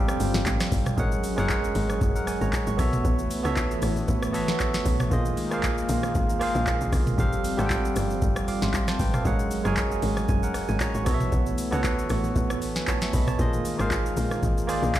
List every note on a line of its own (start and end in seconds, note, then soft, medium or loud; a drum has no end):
0.00 0.96 F3 medium
0.00 0.96 G3 medium
0.00 0.99 G3 medium
0.00 0.96 C4 medium
0.00 1.00 G4 medium
0.00 0.99 A4 medium
0.00 1.00 C5 medium
0.00 1.00 F5 loud
0.00 0.53 G5 loud
0.09 cross-stick loud
0.09 shaker medium
0.20 0.34 G1 loud
0.20 open hi-hat medium
0.20 shaker loud
0.34 0.45 G1 medium
0.34 snare medium
0.34 low bongo medium
0.34 shaker soft
0.46 0.59 G#1 loud
0.46 kick medium
0.46 clap medium
0.46 high bongo medium
0.46 shaker medium
0.60 cross-stick medium
0.60 snare medium
0.60 shaker medium
0.72 0.85 G1 loud
0.72 kick medium
0.72 open hi-hat medium
0.72 low conga medium
0.72 shaker medium
0.86 cross-stick medium
0.86 mid tom medium
0.86 shaker medium
0.96 1.35 G#1 loud
0.96 2.77 F#3 medium
0.96 1.29 G#3 medium
0.96 2.77 G#3 medium
0.96 2.77 C#4 medium
0.96 1.29 G#4 medium
0.96 1.29 A#4 medium
0.96 1.30 C#5 medium
0.96 1.30 F#5 medium
0.96 kick loud
0.96 low conga medium
0.96 shaker medium
1.12 shaker medium
1.24 open hi-hat medium
1.24 shaker medium
1.36 1.73 F#1 loud
1.36 2.09 G#3 medium
1.36 2.09 G#4 medium
1.36 2.01 A#4 medium
1.36 2.02 C#5 medium
1.36 2.02 F#5 medium
1.36 cross-stick medium
1.36 shaker soft
1.49 kick medium
1.49 clap medium
1.49 high bongo medium
1.49 shaker medium
1.64 shaker medium
1.75 1.99 G#1 medium
1.75 open hi-hat medium
1.75 low bongo medium
1.75 shaker medium
1.89 cross-stick medium
1.89 low bongo medium
1.89 shaker soft
2.01 2.39 F#1 medium
2.01 kick loud
2.01 low conga medium
2.01 shaker medium
2.16 2.27 A#4 medium
2.16 2.27 F#5 medium
2.16 shaker medium
2.27 2.41 G#5 medium
2.27 cross-stick medium
2.27 open hi-hat medium
2.27 shaker medium
2.41 2.52 G#1 medium
2.41 2.66 C#5 medium
2.41 2.66 A#5 medium
2.41 low bongo medium
2.41 shaker soft
2.53 kick medium
2.53 clap medium
2.53 high bongo medium
2.53 shaker medium
2.67 2.78 G#1 medium
2.67 2.92 C#6 medium
2.67 shaker medium
2.77 3.03 B1 loud
2.77 5.09 E3 medium
2.77 5.09 A3 medium
2.77 3.30 B3 medium
2.77 5.09 B3 medium
2.77 3.30 F#4 medium
2.77 3.31 A4 medium
2.77 3.31 C#5 medium
2.77 3.31 E5 medium
2.77 kick medium
2.77 cross-stick medium
2.77 mid tom medium
2.77 open hi-hat soft
2.77 low conga medium
2.77 shaker medium
2.93 mid tom medium
2.93 shaker medium
3.05 3.42 B1 loud
3.05 kick loud
3.05 low conga medium
3.05 shaker medium
3.19 shaker medium
3.31 open hi-hat medium
3.31 shaker medium
3.43 3.80 C#2 medium
3.43 4.16 B3 medium
3.43 4.16 F#4 medium
3.43 4.17 A4 medium
3.43 4.17 C#5 medium
3.43 4.17 E5 medium
3.43 cross-stick medium
3.43 shaker soft
3.56 kick medium
3.56 clap medium
3.56 high bongo medium
3.56 shaker medium
3.71 shaker medium
3.82 4.06 A1 medium
3.82 cross-stick medium
3.82 open hi-hat medium
3.82 low bongo medium
3.82 shaker medium
3.96 low bongo medium
3.96 shaker soft
4.08 4.50 A1 loud
4.08 kick loud
4.08 low conga medium
4.08 shaker medium
4.23 cross-stick loud
4.23 shaker medium
4.32 4.96 B3 medium
4.32 4.97 F#4 medium
4.32 4.97 A4 medium
4.32 4.98 C#5 medium
4.32 4.98 E5 loud
4.32 open hi-hat medium
4.32 shaker medium
4.48 4.83 B1 medium
4.48 snare medium
4.48 low bongo medium
4.48 shaker soft
4.60 kick medium
4.60 clap medium
4.60 high bongo medium
4.60 shaker medium
4.74 snare medium
4.74 shaker medium
4.85 5.10 B1 medium
4.85 kick medium
4.85 mid tom medium
4.85 open hi-hat soft
4.85 low conga medium
4.85 shaker medium
5.00 cross-stick medium
5.00 mid tom medium
5.00 shaker medium
5.10 5.53 A#1 loud
5.10 7.17 D#3 medium
5.10 7.17 G#3 medium
5.10 5.42 A#3 medium
5.10 7.17 A#3 medium
5.10 5.43 F4 medium
5.10 5.43 G#4 medium
5.10 5.44 C5 medium
5.10 5.44 D#5 medium
5.10 kick loud
5.10 low conga medium
5.10 shaker medium
5.25 shaker medium
5.37 open hi-hat medium
5.37 shaker medium
5.50 5.87 G#1 medium
5.50 6.23 A#3 medium
5.50 6.23 F4 medium
5.50 6.24 G#4 medium
5.50 6.24 C5 medium
5.50 6.24 F5 medium
5.50 cross-stick medium
5.50 shaker soft
5.63 kick medium
5.63 clap medium
5.63 high bongo medium
5.63 shaker medium
5.78 shaker medium
5.89 6.13 A#1 loud
5.89 open hi-hat medium
5.89 low bongo medium
5.89 shaker medium
6.03 cross-stick medium
6.03 low bongo medium
6.03 shaker soft
6.15 6.52 G#1 loud
6.15 kick loud
6.15 low conga medium
6.15 shaker medium
6.29 shaker medium
6.39 7.03 A#3 medium
6.39 7.04 F4 medium
6.39 7.04 G#4 medium
6.39 7.04 C5 medium
6.39 7.05 F5 loud
6.39 cross-stick medium
6.39 open hi-hat medium
6.39 shaker medium
6.55 6.66 A#1 loud
6.55 low bongo medium
6.55 shaker soft
6.67 kick medium
6.67 clap medium
6.67 high bongo medium
6.67 shaker medium
6.81 6.92 A#1 medium
6.81 shaker medium
6.92 7.17 B1 medium
6.92 kick medium
6.92 cross-stick medium
6.92 mid tom medium
6.92 open hi-hat soft
6.92 low conga medium
6.92 shaker medium
7.07 mid tom medium
7.07 shaker soft
7.17 7.56 G1 loud
7.17 9.23 F3 medium
7.17 7.49 G3 medium
7.17 9.23 G3 medium
7.17 9.23 C4 medium
7.17 7.50 G4 medium
7.17 7.50 A4 medium
7.17 7.50 C5 medium
7.17 7.51 F5 medium
7.17 kick loud
7.17 low conga medium
7.17 shaker medium
7.33 shaker medium
7.44 open hi-hat medium
7.44 shaker medium
7.57 7.93 G#1 loud
7.57 8.30 G3 medium
7.57 8.30 G4 medium
7.57 8.30 A4 medium
7.57 8.31 C5 medium
7.57 7.65 F#5 medium
7.57 cross-stick medium
7.57 low bongo medium
7.57 shaker soft
7.66 8.34 G5 medium
7.66 kick medium
7.66 clap loud
7.66 high bongo medium
7.70 shaker medium
7.85 shaker medium
7.96 8.20 G1 medium
7.96 cross-stick medium
7.96 open hi-hat medium
7.96 low bongo medium
7.96 shaker medium
8.10 shaker soft
8.22 8.59 G1 loud
8.22 kick loud
8.22 low conga medium
8.22 shaker medium
8.36 cross-stick loud
8.36 shaker medium
8.48 8.62 F5 medium
8.48 8.61 D6 medium
8.48 open hi-hat medium
8.48 shaker medium
8.62 8.97 G#1 medium
8.62 8.87 E5 medium
8.62 8.87 C6 medium
8.62 snare medium
8.62 low bongo medium
8.62 shaker soft
8.74 kick medium
8.74 clap medium
8.74 high bongo medium
8.74 shaker medium
8.88 8.99 C5 medium
8.88 8.99 A5 medium
8.88 cross-stick medium
8.88 snare medium
8.88 shaker medium
8.99 9.24 G#1 medium
8.99 9.13 B4 medium
8.99 9.13 G5 medium
8.99 kick medium
8.99 open hi-hat soft
8.99 low conga medium
8.99 shaker medium
9.14 9.39 A4 medium
9.14 9.38 F5 medium
9.14 cross-stick medium
9.14 mid tom medium
9.14 shaker medium
9.24 9.63 G#1 loud
9.24 11.05 F#3 medium
9.24 9.56 G#3 medium
9.24 11.05 G#3 medium
9.24 11.05 C#4 medium
9.24 9.56 G#4 medium
9.24 9.57 A#4 medium
9.24 9.57 C#5 medium
9.24 9.58 F#5 medium
9.24 kick loud
9.24 low conga medium
9.24 shaker medium
9.39 shaker medium
9.51 open hi-hat medium
9.51 shaker medium
9.64 10.00 F#1 loud
9.64 10.37 G#3 medium
9.64 10.37 G#4 medium
9.64 10.29 A#4 medium
9.64 10.29 C#5 medium
9.64 10.28 G#5 medium
9.64 cross-stick medium
9.64 shaker soft
9.77 kick medium
9.77 clap medium
9.77 high bongo medium
9.77 shaker medium
9.92 shaker medium
10.02 10.27 G#1 medium
10.02 open hi-hat medium
10.02 low bongo medium
10.02 shaker medium
10.17 cross-stick medium
10.17 low bongo medium
10.17 shaker soft
10.29 10.66 F#1 loud
10.29 10.42 G#5 medium
10.29 kick loud
10.29 low conga medium
10.29 shaker medium
10.43 10.68 A#4 medium
10.43 10.68 F#5 medium
10.43 shaker medium
10.54 cross-stick medium
10.54 open hi-hat medium
10.54 shaker medium
10.69 10.80 G#1 medium
10.69 10.80 G#5 medium
10.69 low bongo medium
10.69 shaker soft
10.80 10.94 C#5 medium
10.80 10.94 A#5 medium
10.80 kick medium
10.80 clap medium
10.80 high bongo medium
10.80 shaker medium
10.95 11.06 G#1 medium
10.95 11.19 C#6 medium
10.95 shaker medium
11.05 11.30 B1 loud
11.05 13.37 E3 medium
11.05 13.37 A3 medium
11.05 11.57 B3 medium
11.05 13.37 B3 medium
11.05 11.58 F#4 medium
11.05 11.58 A4 medium
11.05 11.58 C#5 medium
11.05 11.14 D#5 medium
11.05 kick medium
11.05 cross-stick medium
11.05 mid tom medium
11.05 open hi-hat soft
11.05 low conga medium
11.05 shaker medium
11.14 11.62 E5 loud
11.20 mid tom medium
11.20 shaker medium
11.32 11.70 B1 loud
11.32 kick loud
11.32 low conga medium
11.32 shaker medium
11.46 shaker medium
11.58 open hi-hat medium
11.58 shaker loud
11.71 12.07 C#2 medium
11.71 12.43 B3 medium
11.71 12.44 F#4 medium
11.71 12.44 A4 medium
11.71 12.45 C#5 medium
11.71 12.45 F#5 medium
11.71 cross-stick medium
11.71 shaker medium
11.84 kick medium
11.84 clap medium
11.84 high bongo medium
11.84 shaker medium
11.99 shaker medium
12.09 12.34 A1 medium
12.09 cross-stick medium
12.09 open hi-hat medium
12.09 low bongo medium
12.09 shaker medium
12.24 low bongo medium
12.24 shaker soft
12.36 12.77 A1 loud
12.36 kick loud
12.36 low conga medium
12.36 shaker medium
12.50 cross-stick loud
12.50 shaker medium
12.62 open hi-hat medium
12.62 shaker medium
12.76 13.11 B1 medium
12.76 12.87 B4 medium
12.76 12.87 G#5 medium
12.76 snare medium
12.76 low bongo medium
12.76 shaker soft
12.87 13.01 C#5 medium
12.87 13.01 A5 medium
12.87 kick medium
12.87 clap medium
12.87 high bongo medium
12.87 shaker medium
13.01 13.13 E5 medium
13.01 13.13 C#6 medium
13.01 snare medium
13.01 shaker medium
13.13 13.37 B1 loud
13.13 13.27 D#5 medium
13.13 13.27 B5 medium
13.13 kick medium
13.13 mid tom medium
13.13 open hi-hat medium
13.13 low conga medium
13.13 shaker medium
13.27 13.53 C#5 medium
13.27 13.52 A5 medium
13.27 cross-stick medium
13.27 mid tom medium
13.27 shaker medium
13.38 13.76 A#1 loud
13.38 15.00 D#3 medium
13.38 15.00 G#3 medium
13.38 13.70 A#3 medium
13.38 15.00 A#3 medium
13.38 13.70 F4 medium
13.38 13.71 G#4 medium
13.38 13.71 C5 medium
13.38 13.72 D#5 medium
13.38 kick loud
13.38 low conga medium
13.38 shaker medium
13.53 shaker medium
13.65 open hi-hat medium
13.65 shaker medium
13.78 14.14 G#1 medium
13.78 14.50 A#3 medium
13.78 14.51 F4 medium
13.78 14.51 G#4 medium
13.78 14.52 C5 medium
13.78 14.52 F5 medium
13.78 cross-stick medium
13.78 shaker soft
13.91 kick medium
13.91 clap medium
13.91 high bongo medium
13.91 shaker medium
14.06 shaker medium
14.17 14.41 A#1 medium
14.17 open hi-hat medium
14.17 low bongo medium
14.17 shaker medium
14.31 cross-stick medium
14.31 low bongo medium
14.31 shaker soft
14.43 14.80 G#1 medium
14.43 kick loud
14.43 low conga medium
14.43 shaker medium
14.58 shaker medium
14.67 15.00 A#3 medium
14.67 15.00 F4 medium
14.67 15.00 G#4 medium
14.67 15.00 C5 medium
14.67 15.00 D5 loud
14.67 cross-stick medium
14.67 open hi-hat medium
14.67 shaker medium
14.82 14.94 A#1 medium
14.82 low bongo medium
14.82 shaker soft
14.95 kick medium
14.95 clap medium
14.95 high bongo medium
14.95 shaker medium